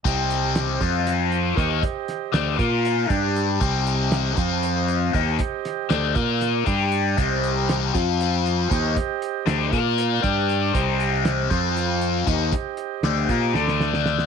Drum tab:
HH |x-x-x-x-x-x-x-|x-x-x-x-x-x-x-|x-x-x-x-x-x-x-|x-x-x-x-x-x-x-|
SD |----o---o---o-|--o-o-o-------|----o-------o-|--o-o---o-----|
BD |o-----o-----o-|o-----o---o---|o-----o-----o-|o-----o---o---|

HH |x-x-x-x-x-x-x-|x-x-x-x-x-x-x-|x-x-x-x-x-x-x-|x-x-x-x-------|
SD |----o---------|----o-o-------|----o-------o-|----o---oooooo|
BD |o-----o-----o-|o-----o---o---|o-----o-----o-|o-----o-------|